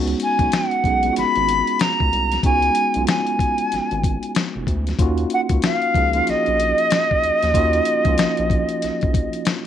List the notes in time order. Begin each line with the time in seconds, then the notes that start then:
Already playing: C#2 G#3 B3 C#4 D#4 F#4
0.07 closed hi-hat
0.20 G#5, closed hi-hat
0.39 B1 G#3 B3 C#4 D#4 F#4, kick, closed hi-hat
0.52 F#5, finger snap, snare, closed hi-hat
0.71 closed hi-hat
0.84 B1 G#3 B3 C#4 D#4 G#4, kick, closed hi-hat
1.03 G#3 B3 C#4 D#4 F4, closed hi-hat
1.13 F#4, closed hi-hat
1.17 G#1 B5, snare
1.35 G#1, closed hi-hat
1.49 closed hi-hat
1.67 closed hi-hat
1.79 A#5, finger snap, snare, closed hi-hat
2.00 C#2, kick
2.12 C2, closed hi-hat
2.32 snare, closed hi-hat
2.43 C#2 G#3 B3 C#4 D#4 F#4 G#5, kick, closed hi-hat
2.62 closed hi-hat
2.75 closed hi-hat
2.94 B1 G#3 B3 C#4 D#4 F4, closed hi-hat
3.07 G#5, finger snap, snare, closed hi-hat
3.27 closed hi-hat
3.39 kick, closed hi-hat
3.58 closed hi-hat
3.72 G#1, snare, closed hi-hat
3.91 G#1, closed hi-hat
4.04 kick, closed hi-hat
4.23 closed hi-hat
4.35 finger snap, snare, closed hi-hat
4.56 F1
4.67 D2, kick, closed hi-hat
4.87 snare, closed hi-hat
4.99 D#2 A#3 C#4 D#4 F4 F#4, kick, closed hi-hat
5.18 closed hi-hat
5.30 F#5, closed hi-hat
5.49 C#2 A#3 C#4 D#4 F4 F#4, kick, closed hi-hat
5.62 F5, finger snap, snare, closed hi-hat
5.82 closed hi-hat
5.95 C#2 F3 A#3 C#4 D#4 G#4, kick, closed hi-hat
6.13 A#3 C#4 D#4 F4, closed hi-hat
6.23 F#4, closed hi-hat
6.28 A#1 D#5, snare
6.46 A#1, closed hi-hat
6.60 closed hi-hat
6.78 closed hi-hat
6.91 finger snap, snare, closed hi-hat
7.11 kick
7.24 D#2, closed hi-hat
7.42 D#2, snare, closed hi-hat
7.54 D#2 A#3 C#4 D#4 F4 F#4, kick, closed hi-hat
7.73 closed hi-hat
7.85 closed hi-hat
8.05 C#2 F3 A#3 C#4 D#4 F4, kick, closed hi-hat
8.18 A#1, finger snap, snare, closed hi-hat
8.37 A#1, closed hi-hat
8.50 kick, closed hi-hat
8.69 closed hi-hat
8.82 A#1, snare, closed hi-hat
9.01 A#1, kick, closed hi-hat
9.14 kick, closed hi-hat
9.33 closed hi-hat
9.45 finger snap, snare, closed hi-hat